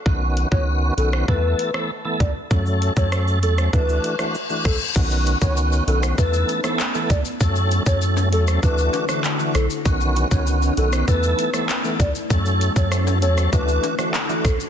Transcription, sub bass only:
X:1
M:4/4
L:1/16
Q:1/4=98
K:Bdor
V:1 name="Sub bass" clef=bass
B,,,3 C,,3 B,,,2 E,,2 z4 C,, z | F,,3 F,,3 E,,2 D,,2 z4 B,,, z | B,,,3 C,,3 B,,,2 E,,2 z4 C,, z | F,,3 F,,3 E,,2 D,,2 z4 B,,, z |
B,,,3 C,,3 B,,,2 E,,2 z4 C,, z | F,,3 F,,3 E,,2 D,,2 z4 B,,, z |]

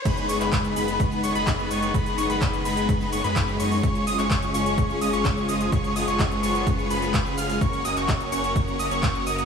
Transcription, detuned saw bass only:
X:1
M:4/4
L:1/16
Q:1/4=127
K:G#dor
V:1 name="Detuned saw bass" clef=bass
F,,,2 F,,, F,,,3 F,,,4 F,,, F,,,3 F,,,2 | F,,,2 F,,, F,,,3 F,,,4 F,,, F,,3 F,,2 | F,,,2 F,,, F,,,3 F,,,4 F,,, F,,,3 F,,,2 | F,,,2 F,,, F,,,3 F,,,4 F,,,4 F,,,2 |
F,,,2 F,,, F,,,3 F,,,4 F,,, F,,,3 F,,,2 |]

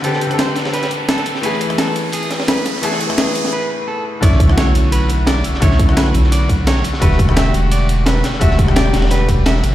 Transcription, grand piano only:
X:1
M:4/4
L:1/16
Q:1/4=172
K:Bm
V:1 name="Grand piano"
[D,B,=CG]3 [D,CA]12- [D,CA] | [E,A,B,^G]3 [E,A,B,]12- [E,A,B,] | [E,A,B,^G]3 [E,A,B,]4- [E,A,B,] z8 | [D,A,CE]3 [D,A,F]12- [D,A,F] |
[D,A,CE]3 [D,A,F]12- [D,A,F] | [D,G,A,F]3 [D,G,A,G]12- [D,G,A,G] | [D,G,A,F]3 [D,G,A,G]12- [D,G,A,G] |]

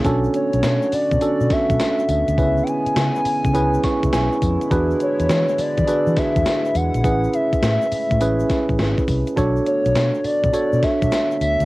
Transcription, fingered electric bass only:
X:1
M:4/4
L:1/16
Q:"Swing 16ths" 1/4=103
K:Bdor
V:1 name="Fingered electric bass" clef=bass
B,,,2 z B,,, B,, z2 B,, z B,, z B,,, z2 D,, D,, | C,,2 z2 C, z2 C, C,,2 z C,, B,,, z ^E,, z | E,,2 z E,, E, z2 E, z E, z E,, z2 E,, ^A,,, | A,,,2 z2 A,, z2 A,, A,,,2 z A,,, G,,, z =C,, z |
B,,,2 z B,,, B,, z2 B,, z B,, z B,,, z2 D,, D,, |]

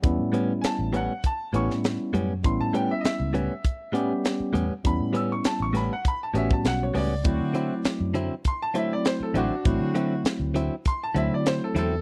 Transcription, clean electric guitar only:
X:1
M:4/4
L:1/8
Q:1/4=100
K:Amix
V:1 name="Clean electric guitar"
z [A,,G,B,C] z [A,,G,B,C] z [A,,G,B,C] z [A,,G,B,C] | z [A,,G,B,C] z [A,,G,B,C] z [A,,G,B,C] z [A,,G,B,C] | z [A,,G,B,C] z [A,,G,B,C] z [A,,G,B,C] z [A,,G,B,C] | z [D,F,=CE] z [D,F,CE] z [D,F,CE] z [D,F,CE] |
z [D,F,=CE] z [D,F,CE] z [D,F,CE] z [D,F,CE] |]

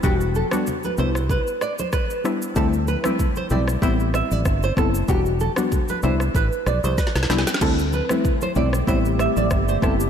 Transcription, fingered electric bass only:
X:1
M:4/4
L:1/16
Q:"Swing 16ths" 1/4=95
K:Dmix
V:1 name="Fingered electric bass" clef=bass
E,,,3 z3 C,,3 z6 z | D,,3 z3 B,,,2 A,,,3 A,,, G,,,2 F,,,2 | E,,,3 z3 C,,2 A,,, z B,,, C,, z C,, C,, z | D,,3 z3 B,,,2 A,,,3 A,,, G,,,2 F,,,2 |]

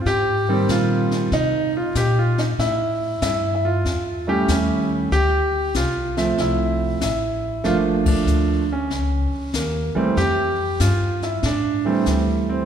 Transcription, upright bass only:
X:1
M:4/4
L:1/8
Q:"Swing" 1/4=95
K:F
V:1 name="Upright bass" clef=bass
_A,,2 B,,2 C,2 B,,2 | A,,2 G,,2 E,,2 _E,,2 | D,,2 C,,2 C,,2 A,,,2 | G,,,2 D,,2 _D,, z _E,, z |
F,,2 G,,2 A,,2 D,,2 |]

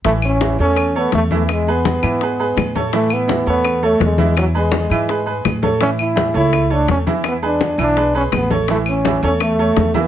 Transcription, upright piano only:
X:1
M:4/4
L:1/8
Q:1/4=167
K:A
V:1 name="Upright piano"
[E,Ee]2 [E,Ee] [A,Ac]2 [A,Ac]2 [E,Ee]- | [E,Ee] [G,GB]2 [E,Ee] [G,GB] [G,GB]2 [A,Ac] | [E,Ee]2 [E,Ee] [A,Ac]2 [A,Ac]2 [E,Ee]- | [E,Ee] [G,GB]2 [E,Ee] [G,GB] [G,GB]2 [A,Ac] |
[E,Ee]2 [E,Ee] [A,Ac]2 [A,Ac]2 [E,Ee]- | [E,Ee] [G,GB]2 [E,Ee] [G,GB] [G,GB]2 [A,Ac] | [E,Ee]2 [E,Ee] [A,Ac]2 [A,Ac]2 [E,Ee] |]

